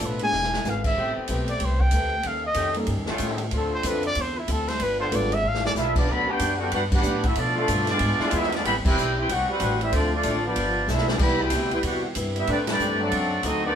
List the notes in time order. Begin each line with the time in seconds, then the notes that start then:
Already playing: F3 B3 D4 A4
0.01 A1 B2 A3 D4 F4, kick
0.06 B4
0.19 G#3 B3 D4 E4 G#4, ride
0.23 G#5
0.32 E1 E3 D4 G#4 B4, snare
0.43 snare
0.53 snare
0.63 G#1 E3 D4 G#4 B4, snare, hi-hat pedal
0.70 F5
0.84 E5, kick, crash
0.96 A1 A3 B3 C4 G4 B4, kick
1.16 muted upright bass stroke
1.28 B1 A3 C4 G4 B4, kick, hi-hat pedal, ride
1.48 D5, ride
1.60 C2 A3 C4 G4, kick, ride
1.64 B4 C5
1.80 G5, kick
1.91 D2 A3 C4 G4 B4, kick, hi-hat pedal, ride
2.23 D#2 D#3 C#4 G4 A4, kick, ride
2.27 F5
2.46 D#5
2.54 F2 D#3 A3 C#4 G4 A4, kick, hi-hat pedal, ride
2.74 G3 A#3 C#4 D#4 A4, ride
2.87 G2 D#3 C#4 G4 A4, kick, ride
2.98 D#2
3.06 C#2 D#3 A3 C#4 F4, snare
3.18 A2 D#3 C#4 G4 A4, kick, hi-hat pedal, ride
3.38 ride
3.51 D2 D3 A3 C4 F4 A4, kick, ride
3.56 A4
3.74 C5
3.83 F2 D3 F3 C4 D4 E4 F4 A4, kick, hi-hat pedal, ride
3.88 B4
4.03 D5, ride
4.15 E2 D3 C4 F4, kick, ride
4.19 A4 C5
4.39 E4
4.48 D2 D3 C4 F4 A4, kick, hi-hat pedal, ride
4.68 C5, snare, ride
4.79 G1 G3 D4 F4 B4, kick, ride
4.99 D3 G3 B3 F4 C5
5.11 G#1 G3 B3 D4 F4 A4 B4, kick, hi-hat pedal, ride
5.15 D5
5.32 E5, ride
5.42 A1 G3 D4 F4 B4
5.48 F5
5.54 snare
5.65 D5, snare
5.75 B1 G3 C4 D4 E4 F4 A4 B4 E5, snare, hi-hat pedal
5.96 F3 B3 D4 F4 G4 D5, kick, crash
6.07 D2 G2 D3 F#3 B3 D4 F#5
6.11 G4 D5 B5
6.27 B3 D4 F#4 G4 B4 G5
6.39 F#2 G2 F#3 B3 D4, kick, hi-hat pedal, ride
6.56 D3 G3 B3 D4 F#4 G4 F#5
6.62 D4 F#4 B4 G5
6.72 G2 F#3 B3 D4 F#4 G4 B4 F#5, kick, ride
6.76 D4
6.92 B3 D4 G4 B4 F#5, kick, crash
7.03 G2 A2 F#3, hi-hat pedal
7.07 B3 D4
7.24 C4 E4 F#4 A4 E5, kick, ride
7.35 B2 F3 A3 B3 D4 F4 A4 D5, ride
7.54 D3 A3 B3 D4 F4 D5
7.58 F3 A4
7.68 G2 B2 F3 A3 D4, kick, hi-hat pedal, ride
7.87 G#3 B3 D4 F4 G#4 D5, snare, ride
7.99 G#2 E3 G#3 D4 F4, kick, ride
8.18 E3 G#3 D4 F4, muted upright bass stroke, snare
8.31 E2 E3 G#3 B3 D4 E4 F4 G#4, kick, hi-hat pedal, ride
8.35 D4 B4 E5
8.43 snare
8.52 G#3 B3 D4 F4 G#4 D5, snare, ride
8.63 A1 A2 E3 G3 B3 C4 G4 C5 E5 B5, kick, ride
8.67 D4
8.75 G1
8.85 E1 C4 E4 G4 B4 C5 G5, kick, crash
8.95 B1 A2 G3 C4 D4, hi-hat pedal
9.17 C4 E4 G4 B4 C5 G5
9.29 C2 A2 G3 C4 D4 F#4 G4 B4 F#5, kick, ride
9.48 G3 C4 F#4 B4, muted upright bass stroke
9.52 E4 C5 F#5
9.59 A1 A2 G3 C4 D4 B4, kick, hi-hat pedal, ride
9.81 G3 C4 E4 G4 B4 E5, ride
9.89 D2 D3 F3 A3 D4 F4 C5, kick, ride
9.94 A3 C4 D4 F4 A4 D5
10.13 F3 A3 C4 D4 F4 A4 D5
10.22 A1 D3 A3 D4 F4 D5, kick, hi-hat pedal, ride
10.27 C4 F4
10.45 F3 B3 D4 F4 G4 D5
10.56 G1 G2 F3 B3, kick, ride
10.60 D4
10.88 B1 G2 F3 B3 C4 D4 E4 F4 A4 E5, snare, hi-hat pedal
10.98 snare
11.08 F3 B3 D4 F4 G4 D5, snare
11.17 C2 C3 E3 G3 B3 E4 G4 E5 B5, kick, crash
11.21 G3 B3 E4 C5
11.40 B2 E4 G4 B4 C5 G5
11.50 D2 C3 G3 B3 E4, kick, hi-hat pedal, ride
11.71 B3 E4 G4 B4 C5 G5, ride
11.82 E2 C3 G3 B3 E4 F#4 B4, kick, ride
11.87 D4 G4 F#5
12.15 G2 C3 G3 B3 E4, kick, hi-hat pedal, ride
12.35 G3 B3 C4 E4 B4, ride
12.39 G4 E5
12.47 A2 A3 C4 D4 G4 B4, kick, ride
12.52 B3 E4 G4 D5
12.67 E3 G3 D4, snare, ride
12.73 C4 G4 B4 D5
12.79 G2 A3 C4 G4 B4, hi-hat pedal
12.99 F#3 A3 D4
13.03 C4 F#4 A4 D5
13.10 F#2 D3 F#3 C4 D#4, kick, ride
13.43 D2 D3 F#3 A3 C4 D#4 F#4 A4 D#5, kick, hi-hat pedal, ride
13.65 D#3 B3 D4 F#4 G4 D5